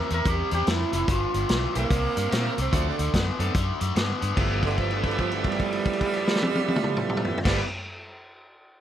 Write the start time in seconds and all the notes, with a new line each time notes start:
Already playing: A#4
0.10 E2 C3 A3 A#4, closed hi-hat
0.25 E2 C3 G3, kick, closed hi-hat
0.29 G4
0.51 E2 C3 G3 G4, closed hi-hat
0.66 F2 C3 A3 E4, snare, closed hi-hat
0.93 F1 C3 A3 E4, closed hi-hat
1.08 G1 G2 D3 F4, kick, closed hi-hat
1.34 G1 G2 D3, closed hi-hat
1.49 B1 G2 E3, snare, closed hi-hat
1.75 B1 G2 E3 A#3 C4 E4 G4, closed hi-hat
1.79 A#3
1.90 C2 C3 G3, kick, closed hi-hat
2.16 G2 C3 G3, closed hi-hat
2.31 A#2 C3 A3 A#3 C4 E4 A#4, snare, closed hi-hat
2.57 C2 C3 A3, closed hi-hat
2.61 C4
2.72 D2 D3 F3 A3 C4 D4 F#4, kick, closed hi-hat
2.89 D3
2.98 D2 D3 A3, closed hi-hat
3.14 F#2 D3 B3, kick, snare, closed hi-hat
3.39 F#2 D3 A3 B3 C4 D4 A4, closed hi-hat
3.54 F#2 D3 A3, kick, closed hi-hat
3.80 F#2 D3 A3, closed hi-hat
3.95 G2 D3 B3, snare, closed hi-hat
4.21 G2 D3 B3, closed hi-hat
4.35 G1 G2 F3 G3 A3 B3 E4, kick, crash
4.63 D3, kick, crash
4.71 crash
4.78 F3, kick, crash
4.91 D3, crash
5.04 D3, kick, crash
5.11 crash
5.18 F3, kick, crash
5.31 D3, crash
5.44 kick, crash
5.48 G3, crash
5.60 kick, crash
5.72 crash
5.85 kick, crash
5.93 crash
6.01 kick, crash
6.14 crash
6.28 snare
6.36 snare
6.42 high tom
6.55 high tom
6.68 high tom
6.76 mid tom
6.84 mid tom
6.97 mid tom
7.09 mid tom
7.17 mid tom
7.25 floor tom
7.38 floor tom
7.43 G1 G2 F3 G3 A3 B3 E4, kick, snare, crash
7.48 E4